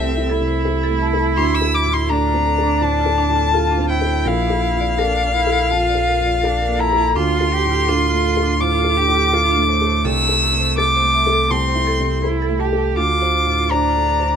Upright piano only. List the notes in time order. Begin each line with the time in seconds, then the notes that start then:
Already playing: C2 C3 A3 A4
0.17 E4
0.41 C3
0.65 A4
0.90 A3
1.13 A4
1.37 D2
1.61 A4
1.85 A2
2.09 A3
2.34 C4
2.58 A4
2.81 A2
3.06 A4
3.30 A2
3.54 A4
3.78 C4
4.01 A4
4.25 A#1
4.50 A4
4.75 F2
4.98 A4
5.22 A#3
5.46 A4
5.71 F2
5.95 A4
6.19 F2
6.43 A4
6.67 A#3
6.92 A4
7.16 D2
7.40 A4
7.65 A2
7.88 A4
8.13 A3
8.37 A4
8.60 A2
8.84 A4
9.08 A2
9.33 A4
9.56 A3
9.81 A4
10.04 C2
10.29 A4
10.53 C3
10.78 A4
11.02 A3
11.26 A4
11.51 C2
11.75 E4
12.00 C3
12.24 A4
12.49 A3
12.72 A4
12.97 D2
13.22 C5
13.46 A2
13.71 C5
13.95 A3
14.20 C5